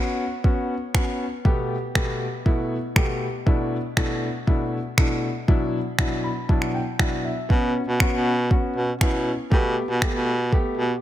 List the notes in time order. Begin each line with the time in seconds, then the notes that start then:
Already playing: B3 C#4 F#4
0.44 B3 C#4 F#4, kick
0.94 B3 C#4 F#4, finger snap, kick
1.45 B2 A3 B3 G4, kick
1.95 B2 A3 B3 G4, finger snap, kick
2.46 B2 A3 B3 E4, kick
2.96 B2 A3 B3 G4, finger snap, kick
3.46 B2 A3 D4 E4, kick
3.97 B2 A3 D4 E4, finger snap, kick
4.47 B2 A3 D4 E4, kick
4.98 B2 A3 D4 E4, finger snap, kick
5.48 B2 F#3 D4 E4, kick
5.98 B2 F#3 D4 E4, finger snap, kick
6.24 B5
6.49 B2 F#3 D4 E4 A5, kick
6.62 finger snap
6.74 G5
6.99 B2 F#3 D4 E4 F#5, finger snap, kick
7.25 E5
7.50 B2 B3 C#4 F#4, kick
7.88 B2
8.00 B3 C#4 F#4, finger snap, kick
8.13 B2
8.50 B3 C#4 F#4, kick
8.76 B2
9.01 B2 B3 C#4 E4, finger snap, kick
9.51 B2 A3 B3 G4, kick
9.90 B2
10.02 A3 B3 G4, finger snap, kick
10.15 B2
10.52 A3 B3 G4, kick
10.78 B2